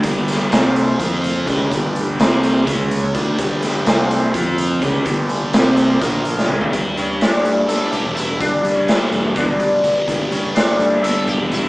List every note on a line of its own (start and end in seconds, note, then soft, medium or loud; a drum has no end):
0.00 0.48 G1 medium
0.00 0.50 G2 medium
0.00 0.50 D3 medium
0.00 0.50 G3 medium
0.00 0.51 D4 medium
0.00 0.98 G4 medium
0.00 0.52 B4 medium
0.00 kick medium
0.00 closed hi-hat medium
0.28 snare soft
0.28 closed hi-hat medium
0.51 0.96 C2 medium
0.51 0.97 C3 medium
0.51 0.98 G3 loud
0.51 0.97 C4 loud
0.51 1.47 C4 medium
0.51 1.46 C5 medium
0.51 snare loud
0.51 closed hi-hat medium
0.76 closed hi-hat medium
0.98 1.44 F2 medium
0.98 1.46 F3 medium
0.98 1.46 C4 loud
0.98 1.47 F4 medium
0.98 1.46 F4 loud
0.98 kick medium
0.98 closed hi-hat medium
1.24 closed hi-hat medium
1.46 1.70 C#2 medium
1.46 1.70 C#3 medium
1.46 1.70 G#3 medium
1.46 1.70 C#4 medium
1.46 2.18 D4 medium
1.46 2.66 G4 medium
1.46 2.19 B4 medium
1.46 kick medium
1.46 snare soft
1.46 closed hi-hat medium
1.70 2.16 G1 medium
1.70 2.18 G2 medium
1.70 2.18 D3 loud
1.70 2.18 G3 loud
1.70 kick loud
1.70 closed hi-hat medium
1.96 closed hi-hat medium
2.18 2.64 C2 medium
2.18 2.65 C3 medium
2.18 2.65 G3 medium
2.18 2.66 C4 loud
2.18 2.67 C4 medium
2.18 2.67 C5 medium
2.18 snare loud
2.18 closed hi-hat medium
2.43 closed hi-hat medium
2.65 3.11 C#2 medium
2.65 3.13 C#3 medium
2.65 3.13 G#3 medium
2.65 3.13 C#4 loud
2.65 3.15 C#4 medium
2.65 3.15 G#4 medium
2.65 3.14 C#5 medium
2.65 kick loud
2.65 closed hi-hat medium
2.91 closed hi-hat medium
3.14 3.37 D2 medium
3.14 3.37 D3 medium
3.14 3.37 A3 medium
3.14 3.37 D4 medium
3.14 3.85 D4 medium
3.14 4.33 G4 medium
3.14 3.86 B4 medium
3.14 kick medium
3.14 closed hi-hat medium
3.38 3.83 G1 medium
3.38 3.85 G2 medium
3.38 3.84 D3 medium
3.38 3.84 G3 loud
3.38 kick loud
3.38 closed hi-hat medium
3.62 snare soft
3.62 closed hi-hat medium
3.84 4.31 C2 medium
3.84 4.33 C3 medium
3.84 4.34 G3 loud
3.84 4.34 C4 medium
3.84 4.81 C4 medium
3.84 4.33 C5 medium
3.84 snare medium
3.84 closed hi-hat medium
4.11 closed hi-hat medium
4.33 4.79 F2 medium
4.33 4.81 F3 medium
4.33 4.81 C4 loud
4.33 4.81 F4 loud
4.33 4.81 F4 medium
4.33 4.81 C5 medium
4.33 kick loud
4.33 closed hi-hat medium
4.58 closed hi-hat medium
4.81 5.04 C#2 medium
4.81 5.05 C#3 medium
4.81 5.05 G#3 medium
4.81 5.05 C#4 medium
4.81 5.53 D4 medium
4.81 5.53 G4 medium
4.81 5.53 B4 medium
4.81 kick medium
4.81 closed hi-hat medium
5.05 5.50 G1 medium
5.05 5.52 G2 medium
5.05 5.53 D3 loud
5.05 5.52 G3 medium
5.05 kick loud
5.05 closed hi-hat medium
5.29 closed hi-hat medium
5.53 5.98 C2 medium
5.53 5.99 C3 medium
5.53 6.00 G3 medium
5.53 6.00 C4 loud
5.53 6.01 C4 medium
5.53 6.01 G4 medium
5.53 6.01 C5 medium
5.53 snare loud
5.53 closed hi-hat medium
5.77 closed hi-hat medium
6.00 6.46 A#1 medium
6.00 6.47 A#2 medium
6.00 6.48 F3 medium
6.00 6.48 A#3 medium
6.00 6.48 F4 medium
6.00 6.48 A#4 medium
6.00 kick medium
6.00 snare soft
6.00 closed hi-hat medium
6.25 closed hi-hat medium
6.39 snare medium
6.47 6.71 C#2 medium
6.47 6.71 C#3 medium
6.47 6.72 G#3 medium
6.47 6.72 C#4 medium
6.47 6.72 D4 medium
6.47 6.72 G4 medium
6.47 6.72 B4 medium
6.47 mid tom medium
6.61 floor tom medium
6.72 6.84 G1 medium
6.72 8.39 G2 medium
6.72 kick loud
6.72 closed hi-hat medium
6.96 7.19 G2 medium
6.96 7.21 C#4 medium
6.96 8.64 G4 medium
6.96 closed hi-hat medium
7.21 7.92 D4 medium
7.21 7.58 D4 medium
7.21 snare loud
7.21 closed hi-hat medium
7.44 8.00 G2 medium
7.44 8.15 G3 medium
7.44 closed hi-hat medium
7.58 7.70 C#4 medium
7.68 9.35 B3 medium
7.68 7.93 A4 medium
7.68 snare soft
7.68 closed hi-hat medium
7.92 8.88 D4 medium
7.92 8.15 G4 medium
7.92 kick medium
7.92 closed hi-hat medium
8.04 8.38 E1 medium
8.15 9.12 G3 medium
8.15 8.40 E4 medium
8.15 closed hi-hat soft
8.39 10.07 G2 medium
8.39 8.52 G2 medium
8.39 8.75 D4 medium
8.39 kick loud
8.39 closed hi-hat medium
8.64 8.86 G2 medium
8.64 10.30 G4 medium
8.64 closed hi-hat soft
8.75 8.80 C#4 medium
8.87 9.32 B3 medium
8.87 9.59 D4 medium
8.87 snare medium
8.87 closed hi-hat medium
9.11 9.56 E1 medium
9.11 9.82 G3 medium
9.11 closed hi-hat medium
9.35 11.03 B3 medium
9.35 9.86 D4 medium
9.35 kick loud
9.35 closed hi-hat medium
9.60 9.71 G2 medium
9.60 10.55 D4 medium
9.60 kick medium
9.60 closed hi-hat medium
9.83 9.95 G1 medium
9.83 10.78 G3 medium
9.83 kick medium
9.83 closed hi-hat soft
10.07 10.19 G1 medium
10.07 11.69 G2 medium
10.07 kick loud
10.07 closed hi-hat medium
10.31 10.54 G2 medium
10.31 10.54 C#4 medium
10.31 11.69 G4 medium
10.31 closed hi-hat medium
10.55 11.00 D4 medium
10.55 11.27 D4 medium
10.55 snare medium
10.55 closed hi-hat medium
10.78 11.35 G2 medium
10.78 11.51 G3 medium
10.78 closed hi-hat medium
11.04 11.69 B3 medium
11.04 11.28 A4 medium
11.04 closed hi-hat medium
11.27 11.69 D4 medium
11.27 11.52 G4 medium
11.27 kick medium
11.27 closed hi-hat medium
11.38 11.69 E1 medium
11.51 11.69 G3 medium
11.51 11.69 E4 medium
11.51 closed hi-hat medium